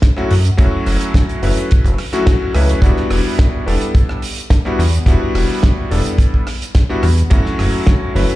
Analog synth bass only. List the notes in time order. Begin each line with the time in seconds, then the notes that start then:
0.31 F#2
0.59 F#1
0.87 F#1
1.43 F#1
1.84 F#1
2.55 C#2
2.82 E1
3.11 E1
3.67 E1
4.79 E2
5.06 E1
5.35 E1
5.91 E1
7.03 E2
7.31 F#1
7.59 F#1
8.15 F#1